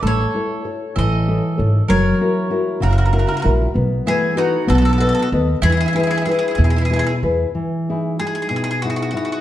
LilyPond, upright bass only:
\new Staff \with { instrumentName = "Upright bass" } { \clef bass \time 6/8 \key e \major \tempo 4. = 64 a,,8 r4 a,,4 gis,,8 | fis,,8 r4 fis,,4 ais,,8 | b,,8 r4 b,,4 dis,8 | e,8 r4 e,4 e,8 |
r2. | }